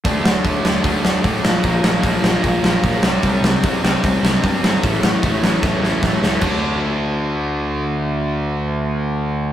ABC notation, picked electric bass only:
X:1
M:4/4
L:1/8
Q:1/4=151
K:Dm
V:1 name="Picked electric bass" clef=bass
D,, D,, D,, D,, D,, D,, A,, B,,, | B,,, B,,, B,,, B,,, B,,, B,,, B,,, C,, | C,, C,, C,, C,, C,, C,, G,, G,,, | A,,, A,,, A,,, A,,, A,,, A,,, A,,, ^C,, |
D,,8- | D,,8 |]